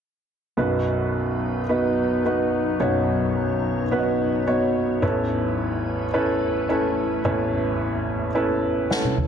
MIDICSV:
0, 0, Header, 1, 4, 480
1, 0, Start_track
1, 0, Key_signature, 5, "major"
1, 0, Tempo, 556070
1, 496, Time_signature, 4, 2, 24, 8
1, 8005, End_track
2, 0, Start_track
2, 0, Title_t, "Upright piano"
2, 0, Program_c, 0, 0
2, 492, Note_on_c, 0, 59, 60
2, 497, Note_on_c, 0, 42, 55
2, 499, Note_on_c, 0, 35, 49
2, 501, Note_on_c, 0, 63, 52
2, 501, Note_on_c, 0, 66, 55
2, 504, Note_on_c, 0, 71, 67
2, 663, Control_c, 0, 64, 127
2, 1381, Note_off_c, 0, 59, 0
2, 1385, Note_off_c, 0, 63, 0
2, 1385, Note_off_c, 0, 66, 0
2, 1386, Note_off_c, 0, 71, 0
2, 1460, Note_on_c, 0, 59, 57
2, 1462, Note_on_c, 0, 63, 54
2, 1463, Note_on_c, 0, 66, 53
2, 1467, Note_on_c, 0, 71, 61
2, 1902, Note_off_c, 0, 59, 0
2, 1902, Note_off_c, 0, 63, 0
2, 1903, Note_off_c, 0, 66, 0
2, 1905, Note_off_c, 0, 71, 0
2, 1942, Note_on_c, 0, 59, 53
2, 1945, Note_on_c, 0, 63, 49
2, 1948, Note_on_c, 0, 66, 50
2, 1949, Note_on_c, 0, 71, 59
2, 2382, Note_off_c, 0, 42, 0
2, 2383, Note_off_c, 0, 35, 0
2, 2383, Note_off_c, 0, 59, 0
2, 2384, Note_off_c, 0, 63, 0
2, 2385, Note_off_c, 0, 66, 0
2, 2386, Note_off_c, 0, 71, 0
2, 2416, Note_on_c, 0, 59, 63
2, 2418, Note_on_c, 0, 42, 50
2, 2420, Note_on_c, 0, 35, 52
2, 2421, Note_on_c, 0, 63, 54
2, 2421, Note_on_c, 0, 66, 55
2, 2421, Note_on_c, 0, 73, 70
2, 3303, Note_off_c, 0, 59, 0
2, 3305, Note_off_c, 0, 63, 0
2, 3305, Note_off_c, 0, 66, 0
2, 3305, Note_off_c, 0, 73, 0
2, 3379, Note_on_c, 0, 59, 64
2, 3379, Note_on_c, 0, 61, 44
2, 3385, Note_on_c, 0, 66, 56
2, 3385, Note_on_c, 0, 71, 70
2, 3434, Note_off_c, 0, 61, 0
2, 3441, Note_on_c, 0, 63, 58
2, 3821, Note_off_c, 0, 59, 0
2, 3824, Note_off_c, 0, 66, 0
2, 3824, Note_off_c, 0, 71, 0
2, 3845, Note_off_c, 0, 63, 0
2, 3858, Note_on_c, 0, 63, 49
2, 3860, Note_on_c, 0, 59, 52
2, 3863, Note_on_c, 0, 66, 52
2, 3864, Note_on_c, 0, 73, 63
2, 4300, Note_off_c, 0, 63, 0
2, 4301, Note_off_c, 0, 59, 0
2, 4302, Note_off_c, 0, 42, 0
2, 4303, Note_off_c, 0, 35, 0
2, 4303, Note_off_c, 0, 66, 0
2, 4303, Note_off_c, 0, 73, 0
2, 4335, Note_on_c, 0, 64, 59
2, 4336, Note_on_c, 0, 61, 62
2, 4337, Note_on_c, 0, 40, 56
2, 4338, Note_on_c, 0, 33, 55
2, 4339, Note_on_c, 0, 71, 69
2, 4342, Note_on_c, 0, 69, 62
2, 4348, Control_c, 0, 64, 0
2, 4504, Control_c, 0, 64, 127
2, 5221, Note_off_c, 0, 64, 0
2, 5222, Note_off_c, 0, 61, 0
2, 5224, Note_off_c, 0, 71, 0
2, 5225, Note_off_c, 0, 69, 0
2, 5299, Note_on_c, 0, 61, 64
2, 5300, Note_on_c, 0, 71, 74
2, 5301, Note_on_c, 0, 64, 55
2, 5304, Note_on_c, 0, 69, 61
2, 5740, Note_off_c, 0, 61, 0
2, 5740, Note_off_c, 0, 71, 0
2, 5741, Note_off_c, 0, 64, 0
2, 5743, Note_off_c, 0, 69, 0
2, 5777, Note_on_c, 0, 61, 61
2, 5779, Note_on_c, 0, 69, 53
2, 5782, Note_on_c, 0, 64, 52
2, 5786, Note_on_c, 0, 71, 62
2, 6219, Note_off_c, 0, 61, 0
2, 6220, Note_off_c, 0, 69, 0
2, 6221, Note_off_c, 0, 33, 0
2, 6221, Note_off_c, 0, 40, 0
2, 6222, Note_off_c, 0, 64, 0
2, 6224, Note_off_c, 0, 71, 0
2, 6258, Note_on_c, 0, 40, 58
2, 6258, Note_on_c, 0, 64, 57
2, 6258, Note_on_c, 0, 69, 59
2, 6259, Note_on_c, 0, 33, 55
2, 6259, Note_on_c, 0, 61, 68
2, 6260, Note_on_c, 0, 71, 70
2, 7142, Note_off_c, 0, 61, 0
2, 7142, Note_off_c, 0, 64, 0
2, 7142, Note_off_c, 0, 69, 0
2, 7143, Note_off_c, 0, 71, 0
2, 7207, Note_on_c, 0, 61, 62
2, 7210, Note_on_c, 0, 64, 61
2, 7211, Note_on_c, 0, 71, 68
2, 7215, Note_on_c, 0, 69, 57
2, 7653, Note_off_c, 0, 61, 0
2, 7655, Note_off_c, 0, 64, 0
2, 7655, Note_off_c, 0, 71, 0
2, 7657, Note_off_c, 0, 69, 0
2, 7687, Note_on_c, 0, 61, 57
2, 7690, Note_on_c, 0, 64, 52
2, 7690, Note_on_c, 0, 78, 55
2, 7693, Note_on_c, 0, 69, 56
2, 7697, Note_on_c, 0, 71, 64
2, 8005, Note_off_c, 0, 33, 0
2, 8005, Note_off_c, 0, 40, 0
2, 8005, Note_off_c, 0, 61, 0
2, 8005, Note_off_c, 0, 64, 0
2, 8005, Note_off_c, 0, 69, 0
2, 8005, Note_off_c, 0, 71, 0
2, 8005, Note_off_c, 0, 78, 0
2, 8005, End_track
3, 0, Start_track
3, 0, Title_t, "Ambient pad"
3, 0, Program_c, 1, 92
3, 493, Note_on_c, 1, 71, 71
3, 497, Note_on_c, 1, 63, 58
3, 498, Note_on_c, 1, 54, 64
3, 498, Note_on_c, 1, 59, 58
3, 2396, Note_off_c, 1, 71, 0
3, 2417, Note_on_c, 1, 73, 73
3, 4302, Note_off_c, 1, 54, 0
3, 4302, Note_off_c, 1, 59, 0
3, 4302, Note_off_c, 1, 63, 0
3, 4317, Note_off_c, 1, 73, 0
3, 4326, Note_on_c, 1, 57, 65
3, 4326, Note_on_c, 1, 71, 77
3, 4327, Note_on_c, 1, 64, 61
3, 4333, Note_on_c, 1, 61, 60
3, 8005, Note_off_c, 1, 57, 0
3, 8005, Note_off_c, 1, 61, 0
3, 8005, Note_off_c, 1, 64, 0
3, 8005, Note_off_c, 1, 71, 0
3, 8005, End_track
4, 0, Start_track
4, 0, Title_t, "Drums"
4, 7692, Note_on_c, 9, 38, 43
4, 7778, Note_off_c, 9, 38, 0
4, 7811, Note_on_c, 9, 48, 43
4, 7897, Note_off_c, 9, 48, 0
4, 7926, Note_on_c, 9, 45, 65
4, 8005, Note_off_c, 9, 45, 0
4, 8005, End_track
0, 0, End_of_file